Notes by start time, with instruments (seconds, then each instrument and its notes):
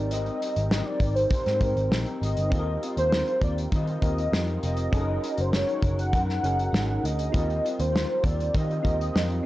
Already playing: picked electric bass G#1, clean electric guitar G3 C4 D#4, synth keys C4 D#4 G4 A#4, soft synth lead D5
0.11 clean electric guitar G#2 D#3 G3 C4 D#4, soft synth lead D#5, closed hi-hat
0.26 closed hi-hat
0.39 clean electric guitar G3 C4 D#4, closed hi-hat
0.56 picked electric bass G#1, closed hi-hat
0.70 clean electric guitar D#3 G3 C4 D#4, soft synth lead D#5, snare
0.86 soft synth lead D5
1.00 picked electric bass G#1, clean electric guitar G3 C4 D#4, kick, closed hi-hat
1.15 soft synth lead C5, closed hi-hat
1.30 clean electric guitar G#2 D#3 G3 C4 D#4, kick, closed hi-hat
1.46 picked electric bass G#2, snare, closed hi-hat
1.60 picked electric bass G#2, synth keys C4 D#4 G4 A#4, clean electric guitar C4 D#4, kick, closed hi-hat
1.64 clean electric guitar G3
1.76 picked electric bass G#1, closed hi-hat
1.90 picked electric bass A#1, clean electric guitar D#3 G3 C4 D#4, snare
2.06 closed hi-hat
2.21 picked electric bass G#1, clean electric guitar G3 C4 D#4, soft synth lead D#5, closed hi-hat
2.37 picked electric bass G1, closed hi-hat
2.50 picked electric bass D#2, clean electric guitar D#3 G3 C4 F4, synth keys C4 F4 G4 A4, kick, closed hi-hat
2.59 synth keys A#4
2.82 clean electric guitar G3 C4 F4, closed hi-hat
2.97 picked electric bass D#2, soft synth lead C5, closed hi-hat
3.12 clean electric guitar D#3 G3 C4 F4, snare
3.28 closed hi-hat
3.42 picked electric bass D#2, clean electric guitar G3 C4 F4, soft synth lead D5, kick, closed hi-hat
3.58 closed hi-hat
3.72 picked electric bass D#3, clean electric guitar D#3 G3 C4, soft synth lead D#5, kick, closed hi-hat
3.76 clean electric guitar F4
3.87 closed hi-hat
4.02 picked electric bass D#2, synth keys C4 F4 G4 A#4, clean electric guitar C4 F4, kick, closed hi-hat
4.06 clean electric guitar G3
4.18 closed hi-hat
4.32 picked electric bass F2, clean electric guitar D#3 G3 C4, snare
4.36 clean electric guitar F4
4.47 closed hi-hat
4.63 picked electric bass F1, clean electric guitar G3 C4 F4, soft synth lead D#5, closed hi-hat
4.77 closed hi-hat
4.92 picked electric bass F#1, clean electric guitar F#3 G#3 D#4 F#4, synth keys C#4 D#4 G#4 A4, kick, closed hi-hat
4.96 clean electric guitar A#4
5.01 synth keys A#4
5.23 clean electric guitar D#4 F#4 A#4, closed hi-hat
5.38 picked electric bass F#1, soft synth lead C5, closed hi-hat
5.52 clean electric guitar G#3 D#4 F#4 A#4, soft synth lead C#5, snare
5.69 closed hi-hat
5.82 picked electric bass F#1, clean electric guitar D#4 F#4 A#4, kick, closed hi-hat
5.99 soft synth lead F#5, closed hi-hat
6.13 picked electric bass F#2, clean electric guitar F#3 G#3 D#4 F#4 A#4, kick, closed hi-hat
6.29 snare
6.43 picked electric bass F#1, synth keys C#4 D#4 G#4 A#4, clean electric guitar D#4 F#4 A#4, closed hi-hat
6.59 closed hi-hat
6.72 picked electric bass G#1, clean electric guitar G#3 D#4 F#4 A#4, snare
7.04 picked electric bass D2, clean electric guitar D#4 F#4 A#4, soft synth lead D#5, closed hi-hat
7.19 closed hi-hat
7.32 picked electric bass D#2, clean electric guitar D#3 G3 C4 F4, synth keys C4 F4 G4 A#4, kick, closed hi-hat
7.50 closed hi-hat
7.64 clean electric guitar G3 C4 F4, closed hi-hat
7.80 picked electric bass D#2, soft synth lead C5, closed hi-hat
7.93 clean electric guitar D#3 G3 C4 F4, snare
8.23 picked electric bass D#2, clean electric guitar G3 C4 F4, soft synth lead D5, kick, closed hi-hat
8.40 closed hi-hat
8.54 clean electric guitar D#3 G3 C4 F4, picked electric bass D#3, soft synth lead D#5, kick, closed hi-hat
8.71 closed hi-hat
8.83 picked electric bass D#2, clean electric guitar G3 C4 F4, synth keys C4 F4 G4 A#4, kick, closed hi-hat
9.01 closed hi-hat
9.14 picked electric bass F2, clean electric guitar D#3 G3 C4 F4, snare
9.30 closed hi-hat